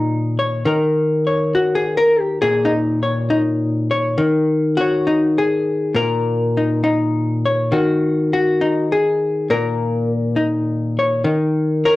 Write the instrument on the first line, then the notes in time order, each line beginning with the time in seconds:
hollow-body jazz guitar
Already playing: A#2 D#3 D#4
0.39 C#5
0.65 D#3 A#4
1.27 C#5
1.55 F#4
1.75 G#4
1.97 A#4
2.20 G4
2.42 A#2 G#4
2.65 D#4
3.03 C#5
3.30 D#4
3.91 C#5
4.18 D#3
4.77 F#4 C#5
5.07 D#4
5.38 G#4
5.94 A#2 A#4
6.57 D#4
6.84 D#4
7.45 C#5
7.72 D#3 F#4
8.33 F#4
8.61 D#4
8.92 G#4
9.50 A#2 A#4
10.36 D#4
10.99 C#5
11.24 D#3
11.85 A#4 C#5